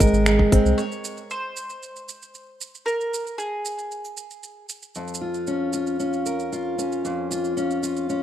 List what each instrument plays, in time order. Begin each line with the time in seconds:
Already playing: steel-string acoustic guitar G#2 G#3 C4
0.00 sub bass G#1, steel-string acoustic guitar A#4, kick, open hi-hat, shaker
0.07 shaker
0.13 sub bass G#1, shaker
0.26 steel-string acoustic guitar G#3, finger snap, shaker
0.39 sub bass G#1, kick
0.52 sub bass G#1, steel-string acoustic guitar C4, kick, open hi-hat, shaker
0.65 sub bass C2, shaker
0.78 mandolin C#5, shaker
0.92 shaker
1.05 shaker
1.17 shaker
1.30 mandolin C5, shaker
1.57 shaker
1.70 shaker
1.83 shaker
1.96 shaker
2.09 shaker
2.22 shaker
2.35 shaker
2.61 shaker
2.75 shaker
2.86 mandolin A#4, shaker
3.01 shaker
3.14 shaker
3.27 shaker
3.38 mandolin G#4, shaker
3.65 shaker
3.79 shaker
3.91 shaker
4.05 shaker
4.17 shaker
4.31 shaker
4.43 shaker
4.69 shaker
4.82 shaker
4.95 steel-string acoustic guitar F2, shaker
5.08 shaker
5.14 shaker
5.21 steel-string acoustic guitar F4
5.34 shaker
5.47 steel-string acoustic guitar C#4, shaker
5.73 steel-string acoustic guitar F4, shaker
5.87 shaker
6.00 steel-string acoustic guitar C#4, shaker
6.13 shaker
6.26 steel-string acoustic guitar A#4, shaker
6.40 shaker
6.52 steel-string acoustic guitar F4, shaker
6.78 steel-string acoustic guitar C#4, shaker
6.92 shaker
7.05 steel-string acoustic guitar F2, shaker
7.31 steel-string acoustic guitar F4, shaker
7.45 shaker
7.57 steel-string acoustic guitar C#4, shaker
7.71 shaker
7.83 steel-string acoustic guitar F4, shaker
7.97 shaker
8.10 steel-string acoustic guitar C#4, shaker